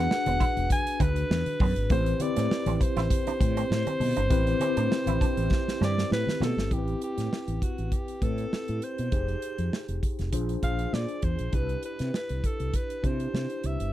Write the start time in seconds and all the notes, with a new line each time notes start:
Already playing: D4 F#4 G#4 B4 F#5
0.11 muted clean electric guitar stroke, snare, muted conga
0.26 E1 B3, closed hi-hat, high conga
0.40 E4, kick, closed hi-hat, low conga
0.56 E1, closed hi-hat
0.70 G#5, kick, closed hi-hat, muted conga, high conga
0.87 closed hi-hat, muted conga
1.00 D2 D4 B4, kick, closed hi-hat, high conga
1.16 closed hi-hat
1.30 E2, snare
1.46 closed hi-hat, muted conga, high conga
1.60 F#2 B3, kick, open hi-hat, high conga, low conga
1.76 G#1, closed hi-hat
1.90 A1 A3 C4 E4 G4 B4 C5, kick, closed hi-hat
2.06 closed hi-hat, muted conga
2.20 C4 E4 G4 C5 D5, muted clean electric guitar stroke, closed hi-hat, high conga
2.36 A2 C4, snare, closed hi-hat
2.50 snare, muted conga
2.66 A1 C4, closed hi-hat, high conga
2.76 D5, low conga
2.80 C5, muted clean electric guitar stroke, kick, closed hi-hat
2.96 A1 E4, snare, closed hi-hat
3.10 kick, closed hi-hat, muted conga, high conga
3.27 D4, closed hi-hat, muted conga
3.40 A2, muted clean electric guitar stroke, kick, closed hi-hat, high conga
3.57 C4, closed hi-hat
3.70 A2, snare, muted conga
3.87 C4, closed hi-hat, muted conga, high conga
4.00 B2, muted clean electric guitar stroke, open hi-hat, high conga, low conga
4.16 G1 D4, closed hi-hat
4.30 A1 C4 E4 G4 B4, kick, closed hi-hat
4.47 muted clean electric guitar stroke, closed hi-hat, muted conga
4.60 C4 E4 G4 C5, closed hi-hat, high conga
4.77 A2 D4, closed hi-hat
4.91 muted clean electric guitar stroke, snare, muted conga
5.06 A1 E4, closed hi-hat, muted conga, high conga
5.20 D4, kick, closed hi-hat, low conga
5.37 A1, closed hi-hat
5.50 kick, snare, high conga
5.68 snare
5.80 G2 C4 D5, snare, high conga
5.98 snare
6.10 A2 B4, snare, muted conga
6.27 snare, muted conga, high conga
6.40 B2 A3 A4, snare, high conga, low conga
6.57 G1, snare
6.70 A1 C4 E4 G4 A#4, kick, closed hi-hat
6.78 B4
6.88 closed hi-hat
7.02 G4, closed hi-hat
7.17 A2, snare, closed hi-hat
7.33 snare
7.47 A1, closed hi-hat
7.62 F#4, kick, closed hi-hat
7.78 A1, closed hi-hat
7.92 G4, kick, closed hi-hat
8.08 closed hi-hat
8.21 A2 C4 E4 G4 A4 B4, kick, closed hi-hat
8.38 closed hi-hat
8.52 muted fretless electric bass stroke, snare
8.68 A2, closed hi-hat
8.82 C5, closed hi-hat
8.98 B2, closed hi-hat
9.11 F1 D#4 G4 G#4 C5, kick, closed hi-hat
9.28 closed hi-hat
9.42 closed hi-hat
9.58 F2, closed hi-hat
9.73 snare
9.88 F1, closed hi-hat
10.03 kick, closed hi-hat
10.19 F1, snare, closed hi-hat
10.32 A#1 D4 F4 G#4 C5, kick, closed hi-hat
10.49 closed hi-hat
10.62 A#1 D4 F4 G#4 C5 F5, kick, closed hi-hat
10.79 closed hi-hat
10.92 A#2 D5, snare
11.09 closed hi-hat
11.22 E2 C5, kick, closed hi-hat
11.39 A#1, closed hi-hat
11.52 C2 D4 E4 G4 B4, kick, closed hi-hat
11.69 closed hi-hat
11.83 B4, closed hi-hat
11.99 C3, snare, closed hi-hat
12.14 B4, snare
12.29 C2, closed hi-hat
12.44 A4, kick, closed hi-hat
12.60 C2, closed hi-hat
12.74 B4, kick, closed hi-hat
12.90 closed hi-hat
13.03 C3 D4 E4 G4 C5, kick, closed hi-hat
13.07 C5
13.20 closed hi-hat
13.33 C3, snare
13.50 closed hi-hat
13.64 C2 E5, closed hi-hat
13.80 G1, closed hi-hat